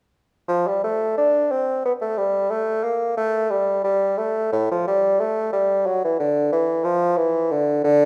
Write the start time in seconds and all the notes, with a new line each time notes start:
0.48 F3
0.67 G3
0.84 A3
1.18 D4
1.51 C4
1.85 B3
2.01 A3
2.17 G3
2.50 A3
2.83 A#3
3.17 A3
3.50 G3
3.84 G3
4.18 A3
4.52 A2
4.71 F3
4.87 G3
5.20 A3
5.53 G3
5.86 F#3
6.05 E3
6.20 D3
6.52 E3
6.84 F3
7.17 E3
7.51 D3
7.84 D3